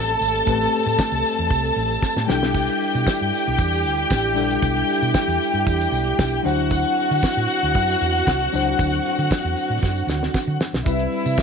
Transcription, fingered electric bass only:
Already playing: A1
0.21 G#1
0.47 A1
0.86 A2
1.12 C2
1.39 E2
1.51 C2
1.76 A1
2.03 muted fingered electric bass stroke
2.16 A2
2.29 B1
2.95 B2
3.21 G2
3.48 B1
3.59 E2
3.85 D2
4.11 A1
4.37 A#1
4.62 B1
5.02 B2
5.28 E2
5.54 G2
5.67 E2
5.92 B1
6.19 B1
6.45 D2
7.11 D3
7.37 A2
7.63 D2
7.75 F#2
8.01 E2
8.27 C2
8.53 C#2
8.79 D2
9.19 D3
9.45 E2
9.70 A2
9.83 F#2
10.07 D2
10.47 D3
10.73 B1
10.86 C2
11.26 C3

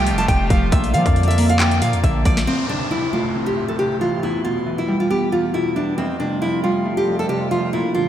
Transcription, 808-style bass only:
Already playing: C2
0.12 F1
0.28 F1
0.50 F1
0.72 A#1
0.94 F3
1.06 F2
1.82 A#2
1.93 F2
2.04 A#1
2.25 A#1

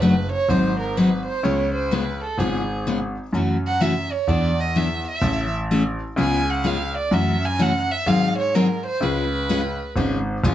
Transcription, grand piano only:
Already playing: F#1
0.49 G#1
1.43 C#2
2.38 G#1
3.33 F#2
4.27 E2
5.22 A1
6.16 C#2
7.11 F#2
8.06 G#2
9.01 C#2
9.96 G#1
10.44 A1

